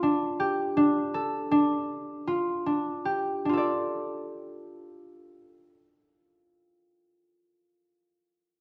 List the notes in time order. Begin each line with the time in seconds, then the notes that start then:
Already playing: F4 G4 A4
0.03 D4
0.40 G4
0.77 D4
1.14 A4
1.51 D4
2.27 F4
2.66 D4
3.05 G4
3.45 D4 F4
3.53 A4
3.57 D5